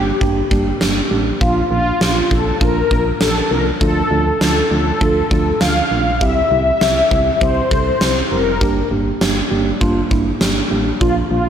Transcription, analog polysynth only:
0.00 0.77 G4 medium
1.41 1.70 F4 medium
1.71 2.33 F4 medium
2.31 2.62 A4 medium
2.61 3.17 A#4 loud
3.21 3.52 A4 medium
3.51 3.64 A#4 medium
3.81 4.40 A4 loud
4.41 5.65 A4 loud
5.61 6.23 F5 loud
6.21 7.45 E5 loud
7.41 8.34 C5 loud
8.31 8.87 A#4 medium
11.01 11.15 F4 medium
11.31 11.49 F4 medium

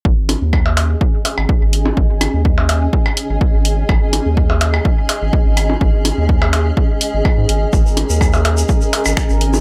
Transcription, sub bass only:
0.05 0.35 G#1 loud
0.42 0.95 D#2 medium
1.38 1.45 G#1 medium
1.62 1.91 G#1 medium
1.97 2.27 G#1 medium
2.34 2.87 D#2 medium
3.30 3.37 G#1 medium
3.54 3.83 G#1 medium
3.89 4.19 G#1 loud
4.26 4.79 D#2 medium
5.22 5.30 G#1 medium
5.46 5.75 G#1 medium
5.81 6.11 G#1 loud
6.18 6.71 D#2 medium
7.14 7.21 G#1 medium
7.38 7.45 G#2 loud
7.49 7.66 G#1 medium
7.73 8.03 G#1 loud
8.10 8.63 D#2 medium
9.06 9.13 G#1 medium
9.30 9.59 G#1 medium

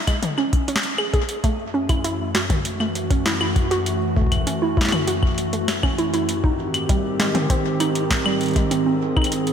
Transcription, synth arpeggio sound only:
0.07 0.19 G#3 medium
0.38 0.45 C#4 medium
0.68 0.75 C#4 medium
0.98 1.10 G#4 medium
1.14 1.20 G#4 medium
1.44 1.55 A3 medium
1.74 1.81 C#4 medium
1.89 2.03 E4 medium
2.04 2.11 E4 medium
2.35 2.46 F#4 medium
2.80 2.91 A3 medium
3.11 3.17 C#4 medium
3.26 3.40 E4 medium
3.41 3.48 E4 medium
3.71 3.82 F#4 medium
4.16 4.28 A3 medium
4.47 4.54 C#4 medium
4.62 4.76 E4 medium
4.77 4.84 E4 medium
5.07 5.19 F#4 medium
5.53 5.64 A3 medium
5.83 5.90 C#4 medium
5.98 6.12 E4 medium
6.14 6.20 E4 medium
6.44 6.55 D#4 medium
6.89 7.01 G3 medium
7.20 7.26 G#3 medium
7.35 7.49 C4 medium
7.50 7.57 C4 medium
7.80 7.91 D#4 medium
8.26 8.37 G3 medium
8.56 8.63 G#3 medium
8.71 8.85 C4 medium
8.86 8.93 C4 medium
9.17 9.28 D#4 medium

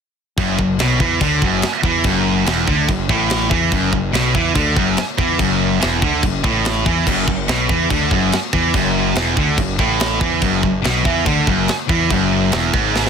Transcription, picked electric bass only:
0.37 0.57 F#1 medium
0.59 0.77 F#1 medium
0.78 0.99 B1 medium
1.00 1.20 E2 medium
1.21 1.41 D2 medium
1.42 1.62 F#1 medium
1.84 2.04 E2 medium
2.05 2.44 F#1 medium
2.46 2.66 E1 loud
2.68 2.87 D2 loud
2.89 3.08 F#1 medium
3.09 3.48 A1 medium
3.51 3.71 E2 medium
3.72 3.92 F#1 medium
3.93 4.12 F#1 medium
4.14 4.34 B1 loud
4.35 4.54 E2 medium
4.55 4.75 D2 loud
4.76 4.96 F#1 medium
5.19 5.38 E2 medium
5.39 5.78 F#1 loud
5.84 6.02 E1 medium
6.02 6.22 D2 medium
6.23 6.42 F#1 medium
6.44 6.83 A1 loud
6.86 7.06 E2 medium
7.07 7.26 F#1 medium
7.28 7.47 F#1 medium
7.48 7.68 B1 medium
7.70 7.89 E2 medium
7.90 8.10 D2 loud
8.11 8.31 F#1 medium
8.53 8.73 E2 medium
8.74 9.13 F#1 medium
9.15 9.35 E1 medium
9.37 9.57 D2 loud
9.58 9.78 F#1 medium
9.79 10.18 A1 medium
10.21 10.41 E2 medium
10.42 10.62 F#1 loud
10.64 10.83 F#1 medium
10.85 11.04 B1 medium
11.05 11.25 E2 medium
11.26 11.46 D2 loud
11.48 11.67 F#1 medium
11.89 12.09 E2 medium
12.11 12.50 F#1 medium
12.54 12.73 E1 medium
12.74 13.10 G#1 medium

